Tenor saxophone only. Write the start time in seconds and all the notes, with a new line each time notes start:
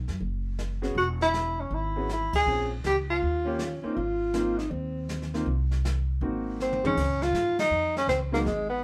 0.98 F#4
1.22 E4
1.60 C#4
1.74 E4
2.13 E4
2.36 G#4
2.87 G4
3.10 F4
6.62 C4
6.87 C#4
7.23 F4
7.60 D#4
7.98 C#4
8.09 C4
8.34 A#3
8.47 G#3
8.70 B3